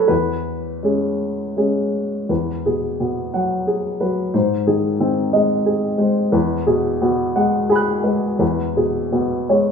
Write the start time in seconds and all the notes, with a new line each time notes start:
Already playing: E2 F#3 B3 G#4 A4 B4 C#5
0.08 E2 B4
0.83 G#3 C#4 G#4
1.57 G#3 C#4 G#4
2.29 E2 B4
2.66 B2 G#4
3.00 B2 B3
3.34 F#3 F#5
3.67 G#4
4.01 F#3 B4
4.34 G#2 C5
4.67 D#3 G#4
5.00 D#3 C4
5.33 G#3 D#5
5.66 G#4
5.98 G#3 C5
6.32 E2 B4
6.67 B2 G#4
7.01 B2 B3
7.36 G#3 F#5
7.70 G#4 G#5 B5
7.76 F#6
8.04 G#3 B4
8.39 E2 B4
8.77 B2 G#4
9.12 B2 B3
9.49 G#3 C#5